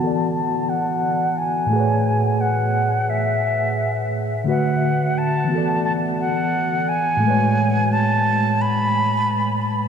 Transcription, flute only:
0.00 0.34 A5 medium
0.35 0.71 A5 loud
0.69 1.39 F#5 medium
1.38 2.42 G#5 loud
2.41 3.11 F#5 medium
3.10 4.13 E5 medium
4.49 5.19 F#5 medium
5.18 5.84 A5 medium
5.85 5.93 A5 medium
6.20 6.90 F#5 medium
6.89 7.94 G#5 loud
7.92 8.63 A5 medium
8.62 9.65 B5 medium

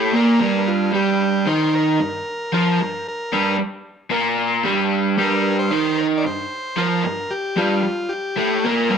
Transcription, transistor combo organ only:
0.00 0.15 G4 medium
0.16 0.70 A#4 loud
0.68 0.92 F4 medium
0.95 1.49 G4 loud
1.48 1.75 C5 medium
1.75 2.53 A#4 medium
2.54 3.07 A#4 medium
3.08 3.57 A#4 medium
5.21 5.57 A#4 loud
5.59 6.00 C5 loud
5.98 6.07 A#4 loud
6.18 6.25 D5 medium
6.26 6.81 C5 loud
6.78 7.33 A#4 loud
7.31 7.59 G4 loud
7.58 8.13 F4 medium
8.09 8.37 G4 medium
8.38 8.66 G4 medium
8.65 8.98 A#4 loud

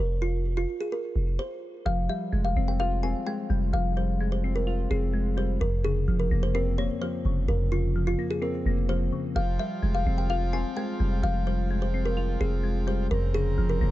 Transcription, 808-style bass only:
0.00 0.66 F1 loud
1.16 1.38 F1 loud
1.86 2.09 F1 loud
2.33 2.55 F1 loud
2.56 3.05 F1 loud
3.03 3.14 E1 loud
3.50 3.73 F1 loud
3.73 4.87 F1 loud
4.91 5.58 F1 loud
5.61 6.06 F1 loud
6.08 6.30 F1 loud
6.31 6.80 F1 loud
6.78 6.89 E1 loud
7.25 7.48 F1 loud
7.48 8.16 F1 loud
8.66 9.11 F1 loud
9.36 9.58 F1 loud
9.83 10.05 F1 loud
10.06 10.55 F1 loud
10.53 10.64 E1 loud
11.00 11.23 F1 loud
11.23 12.37 F1 loud
12.41 13.08 F1 loud
13.11 13.56 F1 loud
13.58 13.80 F1 loud
13.81 13.91 F1 loud

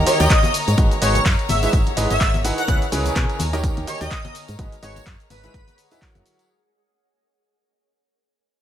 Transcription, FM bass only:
0.20 0.27 D#2 loud
0.68 0.75 G#2 medium
0.78 0.87 G#1 loud
1.02 1.19 G#1 loud
1.26 1.35 F#2 medium
1.49 1.67 G#1 medium
1.73 1.83 G#1 medium
1.97 2.06 G#1 loud
2.11 2.18 G#1 medium
2.21 2.52 G#1 medium
2.68 2.78 C#2 loud
2.92 3.10 C#2 loud
3.16 3.25 B2 medium
3.40 3.71 D#2 medium
3.77 3.84 D#2 loud
4.01 4.08 D#2 loud
4.49 4.56 G#2 medium
4.59 4.68 G#1 loud
4.83 5.00 G#1 loud
5.06 5.16 F#2 medium
5.30 5.48 G#1 medium
5.54 5.64 G#1 medium
6.15 6.22 F#1 medium

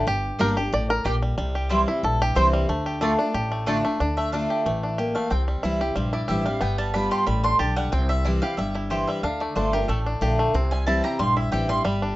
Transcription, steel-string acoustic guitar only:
0.07 0.69 G2 medium
0.39 0.56 G3 medium
0.39 0.56 A#3 loud
0.39 0.57 D4 loud
0.39 0.56 G4 loud
0.57 0.73 D4 medium
0.57 0.72 G4 medium
0.73 1.04 A2 loud
1.05 1.37 A#2 medium
1.38 2.01 C3 medium
1.71 1.87 E3 medium
1.71 1.88 G3 loud
1.71 1.88 C4 loud
1.71 1.87 E4 loud
1.88 2.04 C4 medium
1.88 2.03 E4 medium
2.04 2.66 G2 loud
2.36 2.67 E3 medium
2.36 2.68 G3 medium
2.36 2.68 C4 loud
2.36 2.68 E4 medium
2.69 3.00 D3 medium
3.01 3.18 D3 loud
3.01 3.19 A3 loud
3.01 3.19 D4 loud
3.01 3.18 F4 loud
3.19 3.35 D4 medium
3.19 3.34 F4 medium
3.34 3.97 A2 medium
3.67 3.84 D3 medium
3.67 3.84 A3 medium
3.67 3.84 D4 medium
3.67 3.83 F4 loud
3.84 4.00 D4 medium
3.84 3.99 F4 medium
4.01 4.32 D3 medium
4.33 4.64 D3 medium
4.33 4.64 A3 medium
4.33 4.64 D4 loud
4.33 4.65 F4 medium
4.66 4.97 E3 medium
4.99 5.30 A#3 medium
5.32 5.94 C3 medium
5.64 5.80 E3 medium
5.64 5.80 G3 medium
5.64 5.81 C4 medium
5.64 5.80 E4 loud
5.81 5.97 C4 soft
5.81 5.96 E4 medium
5.97 6.59 G2 loud
6.29 6.46 E3 medium
6.29 6.46 G3 medium
6.29 6.46 C4 loud
6.29 6.45 E4 medium
6.46 6.62 C4 soft
6.46 6.61 E4 medium
6.62 6.93 G3 medium
6.94 7.26 G3 loud
6.94 7.26 B3 medium
6.94 7.26 F4 loud
7.27 7.58 A2 medium
7.60 7.91 D3 medium
7.93 8.55 C3 medium
8.25 8.42 E3 medium
8.25 8.42 G3 medium
8.25 8.43 C4 loud
8.25 8.42 E4 loud
8.43 8.58 C4 soft
8.43 8.58 E4 medium
8.59 9.21 G2 medium
8.91 9.22 E3 medium
8.91 9.22 G3 medium
8.91 9.22 C4 medium
8.91 9.23 E4 loud
9.24 9.54 D3 medium
9.55 9.72 D3 medium
9.55 9.73 A3 loud
9.55 9.73 D4 loud
9.55 9.72 F4 loud
9.73 9.89 D4 soft
9.73 9.88 F4 medium
9.89 10.51 A2 loud
10.21 10.52 D3 loud
10.21 10.53 A3 medium
10.21 10.53 D4 loud
10.21 10.53 F4 medium
10.54 11.17 C3 medium
10.87 11.03 E3 medium
10.87 11.04 G3 loud
10.87 11.04 C4 loud
10.87 11.03 E4 loud
11.04 11.20 C4 medium
11.04 11.19 E4 medium
11.20 11.82 G2 loud
11.52 11.69 E3 medium
11.52 11.69 G3 medium
11.52 11.69 C4 loud
11.52 11.68 E4 loud
11.70 11.85 C4 medium
11.70 11.84 E4 medium
11.85 12.16 G3 medium

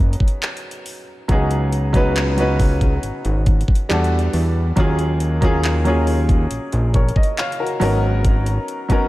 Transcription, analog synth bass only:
0.00 0.16 F#1 medium
1.29 2.99 C#2 loud
3.03 3.12 G#1 medium
3.25 3.64 G#1 medium
3.90 4.29 E2 loud
4.34 4.72 E2 medium
4.77 6.47 D#2 loud
6.51 6.60 A#1 soft
6.73 7.11 A#1 medium
7.81 8.59 G#1 loud

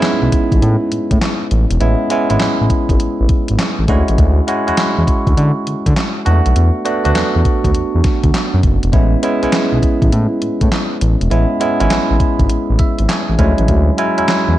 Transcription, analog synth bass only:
0.22 0.30 B1 medium
0.52 0.60 A1 medium
0.62 0.76 A2 loud
0.92 0.99 A2 soft
1.11 1.19 A2 medium
1.51 1.66 A1 medium
1.71 1.78 E1 loud
1.81 1.95 A1 loud
2.30 2.38 G#1 medium
2.41 2.48 A1 medium
2.61 2.68 A1 medium
2.90 2.97 G#1 medium
3.01 3.08 A1 soft
3.20 3.27 A1 medium
3.50 3.57 G#1 medium
3.79 3.86 A1 medium
3.88 4.03 D2 loud
4.09 4.16 A1 medium
4.19 4.41 D2 loud
4.68 4.72 E2 soft
4.98 5.05 E2 loud
5.27 5.35 D2 medium
5.37 5.52 D3 loud
5.67 5.75 D3 soft
5.87 5.94 D3 medium
6.27 6.41 E2 loud
6.46 6.54 B1 loud
6.56 6.71 E2 loud
7.05 7.13 D2 medium
7.15 7.23 E2 soft
7.35 7.43 E2 medium
7.65 7.72 D2 loud
7.75 7.83 E2 soft
7.95 8.02 E2 medium
8.24 8.31 D2 medium
8.54 8.61 F#2 medium
8.64 8.78 F#1 medium
8.83 8.91 E1 loud
8.93 9.16 A1 loud
9.43 9.47 B1 soft
9.72 9.80 B1 medium
10.02 10.10 A1 medium
10.12 10.27 A2 loud
10.42 10.50 A2 soft
10.62 10.69 A2 medium
11.01 11.16 A1 loud
11.21 11.28 E1 loud
11.31 11.46 A1 loud
11.81 11.88 G#1 medium
11.91 11.99 A1 soft
12.11 12.18 A1 medium
12.40 12.47 G#1 medium
12.50 12.58 A1 medium
12.70 12.77 A1 medium
12.99 13.07 G#1 medium
13.29 13.37 A1 medium
13.39 13.53 D2 loud
13.59 13.66 A1 loud
13.69 13.91 D2 loud
14.18 14.22 E2 medium
14.48 14.56 E2 loud

